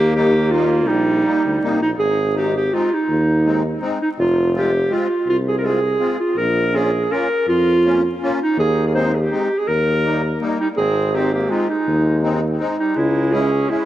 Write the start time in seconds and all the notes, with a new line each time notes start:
Already playing: D#2 A#3 G4
0.15 G3 A#3 D#4 G4
0.51 G3 A#3 D#4 F4
0.86 A#1 G3 D#4
1.26 G3 A#3 D#4
1.44 D2
1.62 C2 G3 A#3 D#4
1.81 A#1 D#4
1.98 G#1 G#4
2.35 G#3 C4 D#4 G4
2.57 G4
2.73 G#3 C4 D#4 F4
2.93 D#4
3.09 D#2
3.45 G#3 C4 D#4
3.81 G#3 C4 D#4
4.02 D#4
4.18 F1 F4
4.55 G#3 C4 F4 G4
4.90 G#3 C4 F4
5.27 C2 F4
5.48 G#4
5.58 A#4
5.63 G#3 C4 F4 G#4
5.99 G#3 C4 F4
6.20 F4
6.37 A#1 A#4
6.74 A#3 C#4 F4 G#4
7.11 A#3 C#4 F4 A#4
7.48 F2 F4
7.85 A#3 C#4 F4
8.22 A#3 C#4 F4
8.43 D#4
8.58 D#2 G#4
8.87 G#4
8.95 G#3 C4 D#4 C5
9.15 G#4
9.21 G4
9.32 G#3 C4 D#4
9.59 G#4
9.68 D#2 A#4
10.04 G3 A#3 D#4
10.41 G3 A#3 D#4
10.60 G3 D#4
10.77 G#1 C4 G#4
11.13 G#3 C4 D#4 G4
11.33 A#3 G4
11.50 G#3 C4 D#4 F4
11.68 G#3 D#4
11.87 D#2
12.23 G#3 C4 D#4
12.59 G#3 C4 D#4
12.79 G3 D#4
12.96 C#2 G#3 E4
13.32 G#3 C#4 E4 G#4
13.69 G#3 C#4 E4